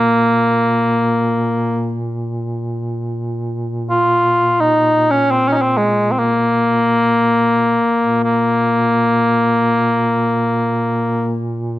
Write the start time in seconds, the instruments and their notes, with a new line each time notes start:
Already playing: duduk A#2, cor anglais A#3
3.90 cor anglais F4
4.61 cor anglais D#4
5.11 cor anglais C#4
5.31 cor anglais C4
5.49 cor anglais C#4 D#4
5.54 cor anglais C#4
5.62 cor anglais C4
5.77 cor anglais G#3
6.11 cor anglais C4
6.19 cor anglais A#3
7.99 duduk A#2
8.23 cor anglais A#3